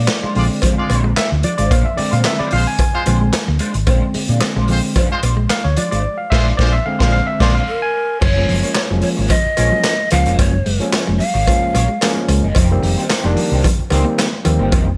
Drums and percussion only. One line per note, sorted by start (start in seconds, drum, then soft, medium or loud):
0.07 snare loud
0.07 clap medium
0.07 closed hi-hat medium
0.07 cowbell medium
0.35 open hi-hat medium
0.62 kick medium
0.62 closed hi-hat loud
0.62 cowbell medium
0.90 closed hi-hat medium
0.90 cowbell medium
1.17 snare loud
1.17 clap medium
1.17 closed hi-hat loud
1.17 cowbell medium
1.43 closed hi-hat medium
1.58 closed hi-hat medium
1.71 kick loud
1.71 closed hi-hat loud
1.71 cowbell medium
1.98 open hi-hat medium
2.13 closed hi-hat soft
2.25 snare loud
2.25 clap medium
2.25 closed hi-hat medium
2.25 cowbell medium
2.51 open hi-hat medium
2.79 kick medium
2.79 closed hi-hat loud
2.79 cowbell medium
3.06 closed hi-hat medium
3.06 cowbell medium
3.33 snare loud
3.33 clap medium
3.33 closed hi-hat loud
3.33 cowbell medium
3.59 closed hi-hat medium
3.74 closed hi-hat medium
3.87 kick loud
3.87 closed hi-hat medium
3.87 cowbell loud
4.14 open hi-hat medium
4.29 closed hi-hat soft
4.41 snare loud
4.41 clap medium
4.41 closed hi-hat medium
4.41 cowbell medium
4.68 open hi-hat medium
4.96 kick loud
4.96 closed hi-hat loud
4.96 cowbell medium
5.23 closed hi-hat medium
5.23 cowbell medium
5.50 snare loud
5.50 clap medium
5.50 closed hi-hat loud
5.50 cowbell medium
5.77 closed hi-hat medium
5.92 closed hi-hat soft
6.32 kick loud
6.32 snare loud
6.32 crash medium
6.59 kick loud
6.59 snare loud
7.00 kick loud
7.00 snare loud
7.40 kick loud
7.40 snare loud
7.40 crash medium
8.22 kick loud
8.22 crash loud
8.22 cowbell medium
8.49 open hi-hat medium
8.63 closed hi-hat soft
8.75 snare loud
8.75 clap medium
8.75 closed hi-hat medium
8.75 cowbell medium
9.02 open hi-hat medium
9.30 kick medium
9.30 closed hi-hat loud
9.30 cowbell medium
9.57 closed hi-hat medium
9.57 cowbell medium
9.84 snare loud
9.84 clap medium
9.84 closed hi-hat loud
9.84 cowbell medium
10.11 closed hi-hat medium
10.11 cowbell medium
10.26 closed hi-hat soft
10.39 kick loud
10.39 closed hi-hat medium
10.39 cowbell loud
10.66 open hi-hat medium
10.81 closed hi-hat medium
10.93 snare loud
10.93 clap medium
10.93 closed hi-hat medium
10.93 cowbell medium
11.20 open hi-hat medium
11.47 kick medium
11.47 closed hi-hat loud
11.47 cowbell medium
11.75 closed hi-hat medium
11.75 cowbell medium
12.01 snare loud
12.01 clap medium
12.01 closed hi-hat loud
12.01 cowbell medium
12.29 closed hi-hat medium
12.29 cowbell medium
12.55 kick loud
12.55 closed hi-hat loud
12.55 cowbell medium
12.83 open hi-hat medium
12.99 closed hi-hat soft
13.09 snare loud
13.09 clap medium
13.09 closed hi-hat medium
13.09 cowbell medium
13.37 open hi-hat medium
13.64 kick medium
13.64 closed hi-hat loud
13.64 cowbell medium
13.90 closed hi-hat medium
13.90 cowbell medium
14.18 snare medium
14.18 clap medium
14.18 closed hi-hat loud
14.18 cowbell medium
14.45 closed hi-hat medium
14.45 cowbell medium
14.72 kick loud
14.72 closed hi-hat medium
14.72 cowbell medium